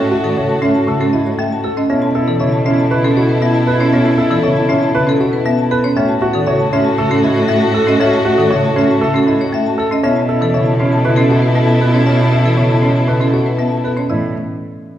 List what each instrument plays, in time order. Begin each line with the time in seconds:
Already playing: cello A2, clarinet F#4, violin section F#4 A4
0.00 marimba C#4 A5
0.11 grand piano F#4, marimba E5
0.18 clarinet F#4
0.24 marimba D#3 A4
0.36 marimba C#3 E5, grand piano C#5
0.45 clarinet F#4, marimba A5
0.62 marimba C#4 E5, grand piano C#4
0.71 clarinet F#4, marimba A5
0.88 marimba C#3 E5, grand piano A4
0.97 marimba C#4 A4, clarinet F#4
1.13 grand piano E4, marimba D#5
1.23 clarinet F#4, marimba C#5
1.39 marimba A3 E5
1.49 clarinet F#4, marimba A5
1.64 marimba A4, grand piano A4
1.77 marimba C#4 D#5
1.87 cello B2, marimba B3 E5, grand piano C#4, clarinet E4, violin section E4 A4
2.02 marimba C#4 A5
2.15 clarinet E4, grand piano A4, marimba E5
2.28 marimba E3 A4
2.40 marimba C#3 E5, clarinet E4, grand piano C#5
2.52 marimba A5
2.66 marimba C#4 E5, grand piano C#4, clarinet E4
2.79 marimba A5
2.91 marimba C#3 E5, clarinet E4, grand piano B4
3.04 marimba C#4 A4
3.17 clarinet E4, grand piano F#4, marimba C#5
3.29 marimba B4
3.42 marimba B3 E5, clarinet E4
3.55 marimba A5
3.67 marimba A4, grand piano B4
3.73 clarinet E4
3.80 marimba C#4 C#5
3.93 marimba B3 E5, grand piano C#4
3.99 clarinet E4
4.05 marimba C#4 A5
4.18 grand piano A4, marimba E5
4.25 clarinet E4
4.31 marimba E3 A4
4.43 marimba C#3 E5, grand piano C#5
4.52 clarinet E4
4.56 marimba A5
4.69 grand piano C#4, marimba C#4 E5
4.77 clarinet E4
4.83 marimba A5
4.94 marimba C#3 E5, grand piano B4
5.04 marimba C#4, clarinet E4
5.09 marimba A4
5.20 grand piano F#4, marimba C#5
5.31 clarinet E4, marimba B4
5.46 marimba B3 E5
5.57 clarinet E4, marimba A5
5.71 marimba A4, grand piano B4
5.84 marimba C#4 C#5
5.95 cello A2, marimba A3 E5, grand piano C#4, violin section F#4 A4, clarinet F#4
6.09 marimba A5
6.21 grand piano F#4, clarinet F#4, marimba E5
6.34 marimba D#3 A4
6.46 marimba C#3 E5, clarinet F#4, grand piano C#5
6.60 marimba A5
6.73 marimba C#4 E5, grand piano C#4, clarinet F#4
6.85 marimba A5
6.98 marimba C#3 E5, clarinet F#4, grand piano A4
7.11 marimba C#4 A4
7.23 grand piano E4, clarinet F#4, marimba D#5
7.36 marimba C#5
7.48 marimba A3 E5
7.53 clarinet F#4
7.62 marimba A5
7.74 grand piano A4, marimba A4
7.79 clarinet F#4
7.87 marimba C#4 D#5
8.00 marimba A3 E5, grand piano C#4
8.05 clarinet F#4
8.14 marimba A5
8.25 grand piano F#4, marimba E5
8.32 clarinet F#4
8.38 marimba D#3 A4
8.50 marimba C#3 E5, grand piano C#5
8.58 clarinet F#4
8.65 marimba A5
8.76 grand piano C#4, marimba C#4 E5
8.84 clarinet F#4
8.91 marimba A5
9.01 marimba C#3 E5, grand piano A4
9.12 marimba C#4, clarinet F#4
9.16 marimba A4
9.27 grand piano E4, marimba D#5
9.38 clarinet F#4, marimba C#5
9.52 marimba A3 E5
9.64 clarinet F#4, marimba A5
9.78 grand piano A4, marimba A4
9.91 marimba C#4 D#5
10.03 cello B2, marimba B3 E5, grand piano C#4, violin section E4 A4, clarinet E4
10.16 marimba A5
10.29 clarinet E4, grand piano A4, marimba E5
10.41 marimba E3 A4
10.54 marimba C#3 E5, clarinet E4, grand piano C#5
10.66 marimba A5
10.80 grand piano C#4, marimba C#4, clarinet E4
10.92 marimba A5
11.04 marimba C#3 E5, clarinet E4, grand piano B4
11.16 marimba C#4 A4
11.30 clarinet E4, grand piano F#4, marimba C#5
11.42 marimba B4
11.55 marimba B3 E5, clarinet E4
11.69 marimba A5
11.81 marimba A4, grand piano B4
11.85 clarinet E4
11.94 marimba C#4 C#5
12.06 marimba B3 E5, grand piano C#4
12.14 clarinet E4
12.20 marimba A5
12.32 grand piano A4, marimba E5
12.39 clarinet E4
12.45 marimba E3 A4
12.57 marimba C#3 E5, grand piano C#5
12.66 clarinet E4
12.71 marimba A5
12.82 marimba C#4, grand piano C#4
12.92 clarinet E4
12.96 marimba A5
13.07 marimba C#3 E5, grand piano B4
13.18 marimba C#4 A4, clarinet E4
13.33 grand piano F#4, marimba C#5
13.44 clarinet E4, marimba B4
13.59 marimba B3 E5
13.70 clarinet E4, marimba A5
13.84 marimba A4, grand piano B4
13.97 marimba C#4 C#5
14.09 cello A2, marimba E3 D#5, grand piano E4